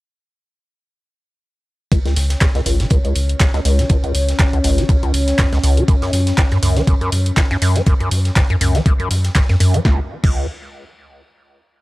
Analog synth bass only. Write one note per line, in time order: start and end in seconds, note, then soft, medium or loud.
2.16 2.36 C#2 medium
2.66 2.85 G#1 loud
3.16 3.35 C#2 medium
3.65 3.84 C#2 medium
4.15 4.34 C#2 loud
4.64 4.84 G#1 medium
5.14 5.33 C#2 medium
5.64 5.83 C#2 medium
6.13 6.32 F#2 loud
6.63 6.82 C#2 medium
7.12 7.32 F#2 medium
7.62 7.81 F#2 medium
8.11 8.31 F#2 loud
8.61 8.80 C#2 medium
9.11 9.30 F#2 medium
9.60 9.79 F#2 medium
9.85 10.00 C#2 loud
10.24 10.47 C#2 loud